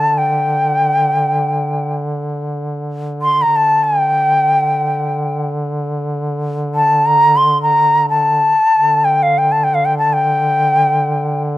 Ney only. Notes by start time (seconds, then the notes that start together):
Already playing: A5
0.18 G5
3.22 C6
3.42 A#5
3.56 A5
3.84 G5
6.75 A5
7.06 A#5
7.36 C6
7.63 A#5
8.10 A5
9.04 G5
9.23 F5
9.38 G5
9.52 A5
9.64 G5
9.74 F5
9.85 G5
9.98 A5
10.13 G5